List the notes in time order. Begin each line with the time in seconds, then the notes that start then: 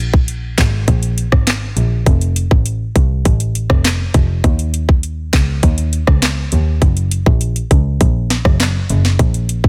Already playing: A#1
0.14 kick
0.28 closed hi-hat
0.58 G#1, kick, snare, clap, closed hi-hat
0.88 A#1, kick, closed hi-hat
1.03 closed hi-hat
1.18 closed hi-hat
1.32 G#1, kick, cross-stick
1.47 snare, clap, closed hi-hat
1.77 A#1, closed hi-hat
2.06 F1, kick, closed hi-hat
2.21 closed hi-hat
2.36 closed hi-hat
2.51 A1, kick
2.66 closed hi-hat
2.96 C2, kick, closed hi-hat
3.25 A1, kick, closed hi-hat
3.40 closed hi-hat
3.55 closed hi-hat
3.70 F1, kick, cross-stick
3.84 snare, clap, closed hi-hat
4.14 F1, kick, closed hi-hat
4.44 D#2, kick, closed hi-hat
4.59 closed hi-hat
4.74 closed hi-hat
4.89 kick
5.03 closed hi-hat
5.33 C#2, kick, snare, clap, closed hi-hat
5.63 D#2, kick, closed hi-hat
5.78 closed hi-hat
5.93 closed hi-hat
6.07 C#2, kick, cross-stick
6.22 snare, clap, closed hi-hat
6.52 D#2, closed hi-hat
6.82 F#1, kick, closed hi-hat
6.97 closed hi-hat
7.11 closed hi-hat
7.26 A#1, kick
7.41 closed hi-hat
7.56 closed hi-hat
7.71 C#2, kick, closed hi-hat
8.01 A#1, kick, closed hi-hat
8.30 snare, closed hi-hat
8.45 F#1, kick, cross-stick
8.60 snare, clap, closed hi-hat
8.90 F#1, closed hi-hat
9.05 snare
9.19 A#1, kick, closed hi-hat
9.34 closed hi-hat
9.49 closed hi-hat
9.64 kick